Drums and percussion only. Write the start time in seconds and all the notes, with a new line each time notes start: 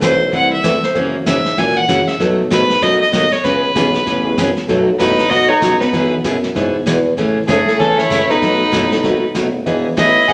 0.02 kick, snare, hi-hat pedal
0.33 brush sweep, kick, snare
0.64 kick, snare, hi-hat pedal
0.83 snare
0.95 brush sweep, kick, snare
1.26 kick, snare, hi-hat pedal
1.45 snare
1.57 brush sweep, kick, snare
1.89 kick, snare, hi-hat pedal
2.08 snare
2.20 brush sweep, kick, snare
2.51 kick, snare, hi-hat pedal
2.70 snare
2.82 brush sweep, kick, snare
3.13 kick, snare, hi-hat pedal
3.32 snare
3.44 brush sweep, kick, snare
3.75 kick, snare, hi-hat pedal
3.94 snare
4.06 brush sweep, kick, snare
4.37 kick, snare, hi-hat pedal
4.57 snare
4.69 brush sweep, kick, snare
5.00 kick, snare, hi-hat pedal
5.19 snare
5.31 brush sweep, kick, snare
5.62 kick, snare, hi-hat pedal
5.81 snare
5.93 brush sweep, kick, snare
6.24 kick, snare, hi-hat pedal
6.43 snare
6.55 brush sweep, kick, snare
6.86 kick, snare, hi-hat pedal
7.17 brush sweep, kick, snare
7.48 kick, snare, hi-hat pedal
7.68 snare
7.79 brush sweep, kick, snare
7.99 snare
8.11 kick, snare, hi-hat pedal
8.30 snare
8.42 brush sweep, kick, snare
8.73 kick, snare, hi-hat pedal
8.92 snare
9.04 brush sweep, kick, snare
9.35 kick, snare, hi-hat pedal
9.66 brush sweep, kick, snare
9.97 kick, snare, hi-hat pedal
10.28 brush sweep, kick, snare